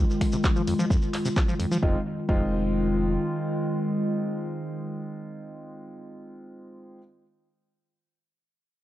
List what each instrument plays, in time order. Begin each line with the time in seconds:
Already playing: ambient pad D#3 G#3 F4
0.10 shekere
0.21 finger snap, kick, open hi-hat
0.32 acid bass C3, shekere
0.44 kick, clap, shekere
0.56 acid bass F3, shekere
0.67 acid bass F2, open hi-hat
0.79 acid bass F3, shekere
0.90 acid bass F2, kick, shekere
1.02 shekere
1.14 clap, open hi-hat
1.25 acid bass C3, open hi-hat, shekere
1.36 kick, clap, shekere
1.48 acid bass F3, shekere
1.59 acid bass F2, open hi-hat
1.71 acid bass F3, shekere
1.83 analog synth bass F1, acid bass F2, ambient pad D#3 G#3 F4, grand piano G#3 C4 D#4 F4, kick
2.29 analog synth bass F1, acid bass F2, grand piano G#3 C4 D#4 F4, kick